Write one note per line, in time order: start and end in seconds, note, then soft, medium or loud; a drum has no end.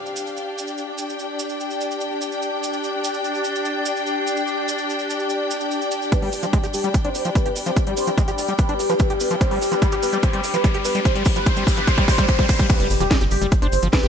0.00 6.13 D4 medium
0.00 12.70 D4 medium
0.00 12.70 G4 medium
0.00 12.70 D5 medium
0.00 0.69 F5 medium
0.00 12.70 G5 medium
0.06 cabasa soft
0.16 cabasa medium
0.27 cabasa soft
0.37 cabasa medium
0.58 cabasa medium
0.68 cabasa soft
0.78 cabasa medium
0.98 cabasa medium
1.09 cabasa soft
1.19 cabasa medium
1.39 cabasa loud
1.49 cabasa soft
1.60 cabasa medium
1.70 cabasa soft
1.81 cabasa medium
1.91 cabasa soft
2.01 cabasa medium
2.21 cabasa medium
2.32 cabasa soft
2.42 cabasa medium
2.63 cabasa medium
2.73 cabasa soft
2.84 cabasa medium
3.04 cabasa loud
3.14 cabasa soft
3.24 cabasa medium
3.35 cabasa soft
3.44 cabasa medium
3.56 cabasa soft
3.65 cabasa medium
3.85 cabasa loud
3.96 cabasa soft
4.07 cabasa medium
4.27 cabasa medium
4.37 cabasa soft
4.47 cabasa soft
4.68 cabasa medium
4.78 cabasa soft
4.90 cabasa medium
4.99 cabasa soft
5.10 cabasa medium
5.19 cabasa soft
5.30 cabasa medium
5.51 cabasa medium
5.61 cabasa soft
5.71 cabasa medium
5.82 cabasa soft
5.91 cabasa medium
6.02 cabasa soft
6.12 12.70 G3 medium
6.12 12.70 G4 medium
6.12 6.29 B4 medium
6.12 kick loud
6.12 closed hi-hat medium
6.12 riser medium
6.12 cabasa soft
6.22 6.29 G1 medium
6.22 6.30 G3 medium
6.22 open hi-hat medium
6.32 6.39 G1 loud
6.32 open hi-hat loud
6.32 cabasa medium
6.43 6.49 F1 medium
6.43 6.46 F3 medium
6.43 6.60 G4 medium
6.43 closed hi-hat medium
6.43 cabasa soft
6.53 6.58 G#3 medium
6.53 kick loud
6.53 closed hi-hat medium
6.53 cabasa medium
6.63 6.70 G1 medium
6.63 6.66 G4 medium
6.63 closed hi-hat soft
6.63 cabasa soft
6.74 6.80 G1 loud
6.74 6.91 G4 loud
6.74 open hi-hat loud
6.74 cabasa loud
6.84 6.90 G1 medium
6.84 6.89 G3 medium
6.84 closed hi-hat medium
6.84 cabasa soft
6.94 kick loud
6.94 closed hi-hat medium
6.94 cabasa medium
7.05 7.11 G1 medium
7.05 7.10 D4 medium
7.05 7.21 C5 medium
7.05 closed hi-hat medium
7.15 7.21 G1 medium
7.15 open hi-hat loud
7.15 cabasa medium
7.25 7.31 G1 medium
7.25 7.30 F3 medium
7.25 closed hi-hat medium
7.25 cabasa soft
7.35 7.52 B4 loud
7.35 kick loud
7.35 closed hi-hat medium
7.35 cabasa medium
7.46 7.52 G#1 medium
7.46 7.49 G4 medium
7.46 closed hi-hat medium
7.56 7.62 G#1 medium
7.56 open hi-hat loud
7.56 cabasa medium
7.66 7.73 G#1 medium
7.66 7.71 F3 medium
7.66 7.83 C5 medium
7.66 closed hi-hat medium
7.66 cabasa soft
7.76 kick loud
7.76 closed hi-hat medium
7.76 cabasa medium
7.87 7.93 F1 medium
7.87 7.94 G3 medium
7.87 closed hi-hat medium
7.97 8.03 F1 loud
7.97 8.14 C5 loud
7.97 open hi-hat loud
7.97 cabasa loud
8.07 8.14 F1 medium
8.07 8.10 F3 medium
8.07 closed hi-hat medium
8.07 cabasa soft
8.18 8.23 G#3 medium
8.18 kick loud
8.18 closed hi-hat medium
8.18 cabasa medium
8.28 8.34 G1 medium
8.28 8.31 G4 medium
8.28 8.45 D5 loud
8.28 closed hi-hat medium
8.28 cabasa soft
8.38 8.44 G1 loud
8.38 open hi-hat loud
8.38 cabasa medium
8.48 8.55 G1 medium
8.48 8.53 G3 medium
8.48 closed hi-hat medium
8.48 cabasa soft
8.58 8.76 B4 loud
8.58 kick loud
8.58 closed hi-hat medium
8.58 cabasa soft
8.69 8.75 B1 medium
8.69 8.74 D4 medium
8.69 closed hi-hat medium
8.79 8.86 B1 loud
8.79 open hi-hat loud
8.79 cabasa medium
8.89 8.96 B1 medium
8.89 8.94 F3 medium
8.89 9.06 B4 loud
8.89 closed hi-hat medium
8.89 cabasa soft
8.99 kick loud
8.99 closed hi-hat medium
8.99 cabasa medium
9.10 9.16 G1 medium
9.10 9.13 G4 medium
9.10 closed hi-hat medium
9.20 9.27 G1 loud
9.20 9.32 B4 medium
9.20 open hi-hat loud
9.20 cabasa loud
9.31 9.37 G1 medium
9.31 9.36 F3 medium
9.31 closed hi-hat medium
9.31 cabasa soft
9.41 9.58 C5 medium
9.41 kick loud
9.41 closed hi-hat medium
9.41 cabasa soft
9.51 9.57 G1 medium
9.51 9.59 G3 medium
9.51 open hi-hat medium
9.61 9.68 G1 loud
9.61 open hi-hat loud
9.61 cabasa medium
9.72 9.78 F1 medium
9.72 9.75 F3 medium
9.72 9.89 B4 medium
9.72 closed hi-hat medium
9.72 cabasa soft
9.82 9.87 G3 medium
9.82 kick loud
9.82 closed hi-hat medium
9.82 cabasa medium
9.92 9.99 G1 medium
9.92 9.95 G4 medium
9.92 closed hi-hat medium
9.92 cabasa soft
10.02 10.09 G1 loud
10.02 10.19 B4 medium
10.02 open hi-hat loud
10.02 cabasa loud
10.13 10.19 G1 loud
10.13 10.18 G3 medium
10.13 closed hi-hat soft
10.13 cabasa soft
10.23 10.40 C5 loud
10.23 kick loud
10.23 closed hi-hat medium
10.23 cabasa medium
10.33 10.40 G1 medium
10.33 10.41 G3 medium
10.33 closed hi-hat soft
10.44 10.50 G1 loud
10.44 open hi-hat loud
10.44 cabasa loud
10.54 10.60 G1 medium
10.54 10.57 F3 medium
10.54 10.71 B4 medium
10.54 closed hi-hat medium
10.54 cabasa soft
10.64 10.69 G3 medium
10.64 kick loud
10.64 closed hi-hat medium
10.64 cabasa medium
10.74 10.81 G#1 medium
10.74 10.77 G4 medium
10.74 closed hi-hat medium
10.85 10.91 G#1 loud
10.85 11.02 B4 medium
10.85 open hi-hat loud
10.85 cabasa loud
10.95 11.01 G#1 loud
10.95 11.00 G3 medium
10.95 closed hi-hat medium
10.95 cabasa soft
11.05 11.22 C5 medium
11.05 kick loud
11.05 closed hi-hat medium
11.05 noise sweep medium
11.05 cabasa medium
11.16 11.22 F1 medium
11.16 11.23 G3 medium
11.16 closed hi-hat medium
11.25 kick loud
11.25 open hi-hat loud
11.25 cabasa medium
11.36 11.42 F1 medium
11.36 11.39 F3 medium
11.36 11.45 B4 medium
11.36 closed hi-hat soft
11.36 cabasa soft
11.46 11.63 C5 loud
11.46 kick loud
11.46 closed hi-hat medium
11.46 cabasa medium
11.56 11.63 G1 medium
11.56 11.64 G3 medium
11.56 closed hi-hat soft
11.56 cabasa soft
11.67 11.73 G1 loud
11.67 kick loud
11.67 open hi-hat loud
11.67 cabasa medium
11.77 11.84 G1 medium
11.77 11.80 F3 medium
11.77 11.86 B4 medium
11.77 closed hi-hat soft
11.77 cabasa soft
11.87 12.04 C5 loud
11.87 kick loud
11.87 closed hi-hat medium
11.87 cabasa medium
11.98 12.04 B1 medium
11.98 12.05 G3 medium
11.98 kick loud
11.98 closed hi-hat soft
12.08 12.14 B1 loud
12.08 12.25 C5 loud
12.08 kick loud
12.08 open hi-hat loud
12.08 cabasa loud
12.18 12.25 B1 medium
12.18 12.26 G3 medium
12.18 kick medium
12.18 closed hi-hat medium
12.18 cabasa soft
12.28 12.45 C5 loud
12.28 kick loud
12.28 closed hi-hat medium
12.28 cabasa medium
12.39 12.45 G1 medium
12.39 12.46 G3 medium
12.39 kick medium
12.39 closed hi-hat medium
12.49 12.55 G1 loud
12.49 12.66 C5 loud
12.49 kick loud
12.49 open hi-hat loud
12.49 cabasa loud
12.59 12.67 G3 medium
12.59 kick medium
12.59 closed hi-hat medium
12.59 cabasa soft
12.69 14.08 C4 medium
12.69 12.87 B4 loud
12.69 14.08 C5 medium
12.69 kick loud
12.69 closed hi-hat medium
12.69 crash loud
12.69 impact medium
12.69 cabasa medium
12.80 12.86 G1 medium
12.80 12.87 G3 medium
12.80 closed hi-hat medium
12.80 cabasa soft
12.90 12.97 G1 loud
12.90 open hi-hat loud
12.90 cabasa medium
13.00 13.07 F1 medium
13.00 13.03 F3 medium
13.00 13.17 G4 loud
13.00 closed hi-hat medium
13.00 cabasa soft
13.11 13.16 G#3 medium
13.11 kick loud
13.11 snare loud
13.11 closed hi-hat medium
13.11 cabasa medium
13.21 13.27 G1 medium
13.21 13.24 G4 medium
13.21 closed hi-hat medium
13.21 cabasa soft
13.31 13.38 G1 loud
13.31 13.48 G4 loud
13.31 open hi-hat loud
13.31 cabasa medium
13.42 13.48 G1 medium
13.42 13.46 G3 medium
13.42 closed hi-hat medium
13.42 cabasa soft
13.52 kick loud
13.52 closed hi-hat medium
13.52 cabasa medium
13.62 13.68 G1 medium
13.62 13.67 D4 medium
13.62 13.79 C5 medium
13.62 closed hi-hat medium
13.62 cabasa soft
13.72 13.79 G1 loud
13.72 open hi-hat loud
13.72 cabasa medium
13.82 13.89 G1 medium
13.82 13.88 F3 medium
13.82 closed hi-hat medium
13.82 cabasa soft
13.93 14.08 B4 loud
13.93 kick loud
13.93 snare loud
13.93 closed hi-hat medium
13.93 cabasa medium
14.03 14.08 G#1 medium
14.03 14.06 G4 medium
14.03 closed hi-hat medium
14.03 cabasa soft